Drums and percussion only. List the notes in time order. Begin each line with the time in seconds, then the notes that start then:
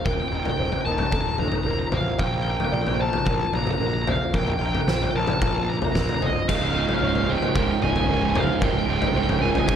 0.06 kick, floor tom
0.45 floor tom
0.72 floor tom
0.98 floor tom
1.11 kick, floor tom
1.38 floor tom
1.52 floor tom
1.92 floor tom, mid tom
2.19 kick, floor tom
2.60 floor tom
2.87 floor tom
3.13 floor tom
3.26 kick, floor tom
3.53 floor tom
3.67 floor tom
4.07 floor tom, mid tom
4.34 kick, floor tom
4.48 mid tom
4.75 floor tom
4.88 snare
5.02 floor tom
5.27 floor tom
5.42 kick, floor tom
5.82 floor tom, mid tom
5.95 kick, snare, mid tom
6.09 floor tom
6.22 floor tom
6.49 kick, floor tom, crash
6.89 floor tom
7.15 floor tom
7.42 floor tom
7.55 kick, floor tom
7.82 floor tom
7.96 floor tom
8.35 floor tom, mid tom
8.62 kick, floor tom
9.02 floor tom
9.29 floor tom
9.55 floor tom
9.68 kick, floor tom